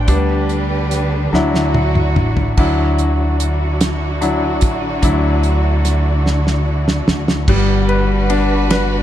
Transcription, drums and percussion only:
0.08 kick, closed hi-hat
0.49 closed hi-hat
0.91 snare, closed hi-hat
1.34 snare
1.54 snare
1.74 high tom
1.95 mid tom
2.16 mid tom
2.37 floor tom
2.57 kick, crash
2.98 closed hi-hat
3.40 closed hi-hat
3.81 snare, closed hi-hat
4.22 closed hi-hat
4.61 kick, closed hi-hat
5.03 kick, closed hi-hat
5.43 closed hi-hat
5.85 snare, closed hi-hat
6.26 snare
6.47 snare
6.88 snare
7.08 snare
7.28 snare
7.48 kick, crash
7.89 ride
8.30 ride
8.70 snare, ride

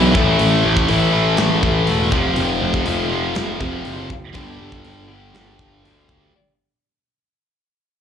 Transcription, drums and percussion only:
0.15 kick
0.39 open hi-hat
0.77 kick
0.88 open hi-hat
1.37 snare, open hi-hat
1.63 kick
1.87 open hi-hat
2.12 kick
2.36 open hi-hat
2.74 kick
2.86 open hi-hat
3.35 snare, open hi-hat
3.61 kick
3.85 open hi-hat
4.10 kick
4.34 kick, open hi-hat
4.72 kick
4.85 open hi-hat
5.35 snare, open hi-hat
5.59 kick
5.85 open hi-hat
6.09 kick

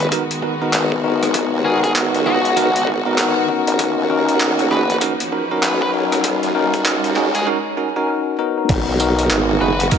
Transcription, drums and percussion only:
0.00 closed hi-hat
0.12 kick, closed hi-hat
0.31 closed hi-hat
0.42 kick
0.73 clap, closed hi-hat
0.92 kick
1.23 cross-stick, closed hi-hat
1.34 kick, closed hi-hat
1.84 kick, closed hi-hat
1.95 clap, closed hi-hat
2.14 closed hi-hat
2.45 closed hi-hat
2.57 closed hi-hat
2.76 closed hi-hat
2.87 kick
3.18 clap, closed hi-hat
3.49 kick
3.67 closed hi-hat
3.79 kick, closed hi-hat
4.29 closed hi-hat
4.40 clap, closed hi-hat
4.59 closed hi-hat
4.71 cross-stick
4.90 closed hi-hat
5.01 kick, closed hi-hat
5.20 closed hi-hat
5.32 kick
5.63 clap, closed hi-hat
5.82 kick
6.12 cross-stick, closed hi-hat
6.24 kick, closed hi-hat
6.43 closed hi-hat
6.74 kick, closed hi-hat
6.85 clap, closed hi-hat
7.04 closed hi-hat
7.16 cross-stick, clap
7.35 closed hi-hat
8.69 kick, closed hi-hat, crash
9.00 tambourine
9.19 closed hi-hat
9.30 clap, closed hi-hat
9.80 closed hi-hat
9.91 kick, closed hi-hat

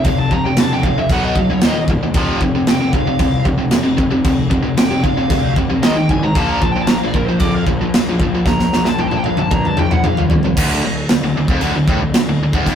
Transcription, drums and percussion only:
0.04 kick, crash
0.31 kick
0.57 snare, crash
0.83 kick
1.10 kick, crash
1.36 kick
1.61 snare, crash
1.88 kick
2.14 kick, crash
2.41 kick
2.67 snare, crash
2.93 kick
3.19 kick, crash
3.45 kick
3.71 snare, crash
3.98 kick
4.25 kick, crash
4.51 kick
4.77 snare, crash
5.04 kick
5.30 kick, crash
5.56 kick
5.83 snare, crash
6.09 kick
6.35 kick, crash
6.62 kick
6.87 snare, crash
7.14 kick
7.40 kick, crash
7.67 kick
7.94 snare, crash
8.20 kick
8.46 kick, snare
8.59 snare
8.73 snare
8.85 snare
8.99 high tom
9.11 high tom
9.24 high tom
9.37 mid tom
9.51 kick, mid tom
9.65 mid tom
9.77 mid tom
9.91 mid tom
10.04 mid tom
10.17 floor tom
10.30 floor tom
10.43 floor tom
10.57 kick, crash
11.09 snare, crash
11.48 kick
11.61 crash
11.88 kick
12.14 snare, crash
12.53 kick
12.67 kick, crash

